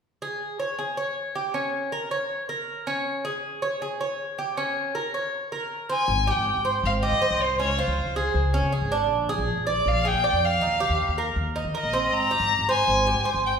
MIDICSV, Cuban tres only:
0, 0, Header, 1, 2, 480
1, 0, Start_track
1, 0, Key_signature, -4, "major"
1, 0, Tempo, 377834
1, 33, Time_signature, 4, 2, 24, 8
1, 17271, End_track
2, 0, Start_track
2, 0, Title_t, "Cuban tres"
2, 0, Program_c, 0, 25
2, 280, Note_on_c, 0, 68, 61
2, 744, Note_off_c, 0, 68, 0
2, 757, Note_on_c, 0, 73, 55
2, 990, Note_off_c, 0, 73, 0
2, 998, Note_on_c, 0, 68, 52
2, 1231, Note_off_c, 0, 68, 0
2, 1236, Note_on_c, 0, 73, 59
2, 1704, Note_off_c, 0, 73, 0
2, 1721, Note_on_c, 0, 67, 59
2, 1953, Note_off_c, 0, 67, 0
2, 1958, Note_on_c, 0, 61, 55
2, 2426, Note_off_c, 0, 61, 0
2, 2442, Note_on_c, 0, 70, 62
2, 2675, Note_off_c, 0, 70, 0
2, 2682, Note_on_c, 0, 73, 58
2, 3149, Note_off_c, 0, 73, 0
2, 3163, Note_on_c, 0, 70, 57
2, 3630, Note_off_c, 0, 70, 0
2, 3645, Note_on_c, 0, 61, 71
2, 4112, Note_off_c, 0, 61, 0
2, 4125, Note_on_c, 0, 68, 65
2, 4592, Note_off_c, 0, 68, 0
2, 4601, Note_on_c, 0, 73, 63
2, 4837, Note_off_c, 0, 73, 0
2, 4851, Note_on_c, 0, 68, 56
2, 5082, Note_off_c, 0, 68, 0
2, 5090, Note_on_c, 0, 73, 58
2, 5556, Note_off_c, 0, 73, 0
2, 5570, Note_on_c, 0, 67, 57
2, 5803, Note_off_c, 0, 67, 0
2, 5810, Note_on_c, 0, 61, 64
2, 6276, Note_off_c, 0, 61, 0
2, 6287, Note_on_c, 0, 70, 58
2, 6522, Note_off_c, 0, 70, 0
2, 6532, Note_on_c, 0, 73, 55
2, 6998, Note_off_c, 0, 73, 0
2, 7013, Note_on_c, 0, 70, 59
2, 7478, Note_off_c, 0, 70, 0
2, 7489, Note_on_c, 0, 60, 67
2, 7723, Note_off_c, 0, 60, 0
2, 7969, Note_on_c, 0, 67, 66
2, 8436, Note_off_c, 0, 67, 0
2, 8446, Note_on_c, 0, 72, 63
2, 8915, Note_off_c, 0, 72, 0
2, 8927, Note_on_c, 0, 67, 66
2, 9162, Note_off_c, 0, 67, 0
2, 9167, Note_on_c, 0, 72, 65
2, 9635, Note_off_c, 0, 72, 0
2, 9648, Note_on_c, 0, 61, 61
2, 9882, Note_off_c, 0, 61, 0
2, 9890, Note_on_c, 0, 65, 70
2, 10356, Note_off_c, 0, 65, 0
2, 10368, Note_on_c, 0, 68, 69
2, 10835, Note_off_c, 0, 68, 0
2, 10848, Note_on_c, 0, 61, 72
2, 11082, Note_off_c, 0, 61, 0
2, 11083, Note_on_c, 0, 68, 66
2, 11319, Note_off_c, 0, 68, 0
2, 11327, Note_on_c, 0, 62, 73
2, 11793, Note_off_c, 0, 62, 0
2, 11804, Note_on_c, 0, 68, 72
2, 12272, Note_off_c, 0, 68, 0
2, 12280, Note_on_c, 0, 74, 72
2, 12749, Note_off_c, 0, 74, 0
2, 12766, Note_on_c, 0, 68, 65
2, 12999, Note_off_c, 0, 68, 0
2, 13007, Note_on_c, 0, 74, 63
2, 13472, Note_off_c, 0, 74, 0
2, 13482, Note_on_c, 0, 63, 61
2, 13716, Note_off_c, 0, 63, 0
2, 13725, Note_on_c, 0, 67, 74
2, 14190, Note_off_c, 0, 67, 0
2, 14203, Note_on_c, 0, 70, 61
2, 14668, Note_off_c, 0, 70, 0
2, 14681, Note_on_c, 0, 63, 70
2, 14915, Note_off_c, 0, 63, 0
2, 14922, Note_on_c, 0, 70, 66
2, 15155, Note_off_c, 0, 70, 0
2, 15159, Note_on_c, 0, 60, 69
2, 15626, Note_off_c, 0, 60, 0
2, 15639, Note_on_c, 0, 67, 66
2, 16105, Note_off_c, 0, 67, 0
2, 16118, Note_on_c, 0, 72, 68
2, 16584, Note_off_c, 0, 72, 0
2, 16601, Note_on_c, 0, 67, 57
2, 16832, Note_off_c, 0, 67, 0
2, 16835, Note_on_c, 0, 72, 67
2, 17271, Note_off_c, 0, 72, 0
2, 17271, End_track
0, 0, End_of_file